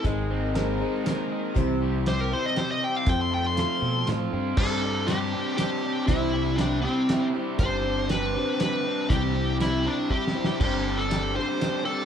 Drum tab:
CC |---------|---------|---------|x--------|
HH |x--x--x--|x--x--x--|x--x--x--|---x--x--|
SD |---o--o--|---o--o--|---o--o--|---o--o--|
BD |o--------|o--------|o--------|o--------|

CC |---------|---------|---------|x--------|
HH |x--x--x--|x--x--x--|x--x-----|---x--x--|
SD |---o--o--|---o--o--|---o---oo|---o--o--|
BD |o--------|o--------|o-----o--|o--------|